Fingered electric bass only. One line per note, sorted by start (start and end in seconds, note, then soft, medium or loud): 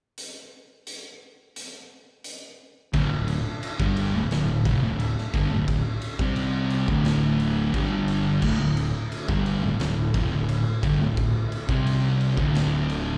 2.94 3.09 D1 loud
3.10 3.42 D1 medium
3.80 4.11 G1 medium
4.14 4.30 D1 medium
4.31 4.63 D1 medium
4.65 4.81 F1 medium
4.82 5.14 D1 medium
5.34 5.50 G1 medium
5.50 5.83 D1 medium
6.19 6.84 C2 loud
6.88 7.70 D1 loud
7.74 8.39 G1 loud
8.42 8.59 D1 loud
8.60 8.92 D1 medium
9.28 9.60 G1 loud
9.63 9.79 D1 medium
9.79 10.11 D1 medium
10.14 10.30 F1 loud
10.31 10.63 D1 medium
10.83 10.99 G1 medium
11.00 11.32 D1 medium
11.69 12.33 C2 loud
12.37 13.18 D1 loud